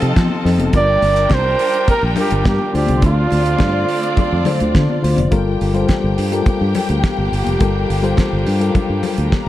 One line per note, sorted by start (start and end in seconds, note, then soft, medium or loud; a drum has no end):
0.00 0.14 C3 loud
0.00 0.45 F3 medium
0.00 0.71 F3 medium
0.00 0.45 C4 medium
0.00 0.72 C4 medium
0.00 0.46 D#4 medium
0.00 0.71 D#4 medium
0.00 0.46 F4 medium
0.00 0.70 F4 medium
0.00 0.72 G4 medium
0.00 0.46 A4 loud
0.00 0.71 A4 medium
0.00 0.70 D#5 loud
0.00 0.70 A5 loud
0.00 closed hi-hat medium
0.16 0.28 F3 loud
0.16 kick loud
0.16 snare loud
0.16 closed hi-hat medium
0.16 high conga medium
0.30 high conga medium
0.45 0.57 F2 medium
0.45 0.65 F3 medium
0.45 0.65 C4 medium
0.45 0.66 D#4 medium
0.45 0.66 A4 loud
0.45 snare soft
0.45 open hi-hat medium
0.58 0.71 F1 medium
0.58 closed hi-hat medium
0.58 high conga medium
0.73 0.97 G1 loud
0.73 2.72 G3 medium
0.73 1.56 G3 medium
0.73 2.70 D4 medium
0.73 2.72 D4 medium
0.73 1.56 D4 medium
0.73 5.15 F4 medium
0.73 1.56 F4 medium
0.73 2.72 G4 medium
0.73 2.70 A#4 medium
0.73 2.72 A#4 medium
0.73 1.57 A#4 medium
0.73 1.35 D5 loud
0.73 2.70 G5 loud
0.73 kick loud
0.73 closed hi-hat medium
0.73 muted conga medium
1.02 1.26 G1 loud
1.02 open hi-hat medium
1.02 muted conga soft
1.16 closed hi-hat soft
1.30 1.54 C2 loud
1.30 kick loud
1.30 snare loud
1.30 closed hi-hat medium
1.30 high conga medium
1.34 1.90 C5 loud
1.59 open hi-hat medium
1.74 closed hi-hat soft
1.88 2.03 A#4 loud
1.88 kick loud
1.88 closed hi-hat medium
1.88 muted conga medium
2.03 2.14 A#1 medium
2.16 2.58 G3 medium
2.16 2.58 D4 medium
2.16 2.58 F4 medium
2.16 2.45 G4 medium
2.16 2.58 A#4 medium
2.16 open hi-hat medium
2.16 low conga medium
2.31 2.43 G1 medium
2.31 closed hi-hat medium
2.44 2.57 G2 loud
2.44 2.73 G4 medium
2.44 kick loud
2.44 snare loud
2.44 closed hi-hat medium
2.44 high conga medium
2.59 high conga medium
2.73 2.86 D2 medium
2.73 3.65 D3 medium
2.73 5.27 A3 medium
2.73 5.15 C4 medium
2.73 5.15 D4 medium
2.73 3.65 D4 medium
2.73 5.28 F4 medium
2.73 3.66 F4 medium
2.73 3.02 G4 medium
2.73 3.66 C5 medium
2.73 5.27 D5 loud
2.73 open hi-hat medium
2.87 3.01 C2 loud
2.87 closed hi-hat medium
2.87 high conga medium
3.02 3.26 D2 loud
3.02 4.71 F4 loud
3.02 kick loud
3.02 closed hi-hat medium
3.02 muted conga medium
3.30 3.55 D2 medium
3.30 open hi-hat medium
3.30 muted conga soft
3.46 closed hi-hat soft
3.59 3.83 G2 medium
3.59 kick loud
3.59 snare loud
3.59 closed hi-hat medium
3.59 high conga medium
3.89 open hi-hat medium
4.03 closed hi-hat medium
4.17 kick loud
4.17 closed hi-hat medium
4.17 muted conga medium
4.17 low conga medium
4.33 4.44 F2 medium
4.45 4.86 D3 medium
4.45 4.87 D4 medium
4.45 4.87 F4 medium
4.45 4.87 C5 loud
4.45 open hi-hat medium
4.45 low conga medium
4.60 4.72 D2 medium
4.60 closed hi-hat soft
4.75 4.87 D3 loud
4.75 kick loud
4.75 snare loud
4.75 closed hi-hat medium
4.75 high conga medium
4.89 high conga medium
5.02 5.15 D2 medium
5.02 5.23 D3 medium
5.02 5.23 D4 medium
5.02 5.23 F4 medium
5.02 5.24 C5 loud
5.02 open hi-hat medium
5.17 5.29 F1 loud
5.17 closed hi-hat medium
5.17 high conga medium
5.31 5.55 G1 loud
5.31 5.62 G3 loud
5.31 9.49 G3 medium
5.31 9.49 A#3 medium
5.31 9.49 D4 medium
5.31 5.62 F4 medium
5.31 9.49 F4 medium
5.31 9.29 G4 medium
5.31 7.59 G4 medium
5.31 5.62 A4 medium
5.31 5.63 A#4 loud
5.31 9.29 G5 loud
5.31 kick loud
5.31 closed hi-hat medium
5.31 muted conga medium
5.61 5.84 G1 medium
5.61 open hi-hat medium
5.74 6.15 G3 medium
5.74 6.15 F4 medium
5.74 6.16 A4 medium
5.74 6.16 C5 loud
5.74 closed hi-hat soft
5.89 kick medium
5.89 snare loud
5.89 closed hi-hat medium
5.89 high conga medium
6.04 6.15 G1 medium
6.18 6.41 G2 loud
6.18 open hi-hat medium
6.32 7.14 G3 medium
6.32 7.14 F4 medium
6.32 7.14 A4 medium
6.32 7.15 A#4 medium
6.32 closed hi-hat medium
6.46 kick loud
6.46 closed hi-hat medium
6.46 muted conga medium
6.61 6.72 G2 medium
6.75 open hi-hat medium
6.75 low conga medium
6.89 7.01 D2 medium
6.89 closed hi-hat medium
7.03 kick loud
7.03 snare loud
7.03 closed hi-hat medium
7.03 high conga medium
7.17 7.30 G1 medium
7.17 high conga medium
7.32 7.44 G1 medium
7.32 open hi-hat medium
7.45 7.58 F1 medium
7.45 closed hi-hat medium
7.45 high conga medium
7.59 7.84 G1 loud
7.59 7.91 G3 medium
7.59 7.91 F4 medium
7.59 9.49 G4 medium
7.59 7.91 A4 medium
7.59 7.91 A#4 loud
7.59 kick loud
7.59 closed hi-hat medium
7.59 muted conga medium
7.90 8.13 G1 loud
7.90 open hi-hat medium
8.03 8.44 G3 medium
8.03 8.44 F4 medium
8.03 8.45 A4 medium
8.03 8.45 C5 loud
8.03 closed hi-hat soft
8.17 kick loud
8.17 snare loud
8.17 closed hi-hat medium
8.17 high conga medium
8.33 8.44 G1 medium
8.47 8.70 G2 loud
8.47 open hi-hat medium
8.60 9.42 G3 medium
8.60 9.43 F4 medium
8.60 9.43 A4 medium
8.60 9.43 A#4 medium
8.60 closed hi-hat medium
8.75 kick loud
8.75 closed hi-hat medium
8.75 muted conga soft
8.75 low conga medium
8.90 9.01 G2 medium
9.03 open hi-hat medium
9.03 low conga medium
9.18 9.30 D2 medium
9.18 closed hi-hat medium
9.31 9.49 A#4 medium
9.31 9.49 A#5 medium
9.31 kick loud
9.31 snare loud
9.31 closed hi-hat medium
9.31 high conga medium